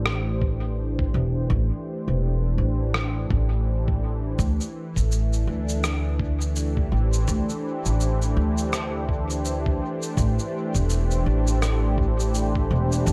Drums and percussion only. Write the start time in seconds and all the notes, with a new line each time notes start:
0.06 cross-stick
0.42 kick
0.99 kick
1.50 kick
2.94 cross-stick
3.31 kick
3.88 kick
4.39 kick, shaker
4.61 shaker
4.96 kick, shaker
5.12 shaker
5.33 shaker
5.69 shaker
5.84 cross-stick, shaker
6.20 kick
6.41 shaker
6.56 shaker
6.77 kick
7.13 shaker
7.28 kick, shaker
7.49 shaker
7.86 shaker
8.00 shaker
8.22 shaker
8.58 shaker
8.73 cross-stick, shaker
9.09 kick
9.30 shaker
9.45 shaker
9.66 kick
10.02 shaker
10.17 kick, shaker
10.39 shaker
10.75 kick, shaker
10.90 shaker
11.11 shaker
11.47 shaker
11.62 cross-stick, shaker
11.98 kick
12.20 shaker
12.35 shaker
12.55 kick
12.92 shaker
13.06 kick, shaker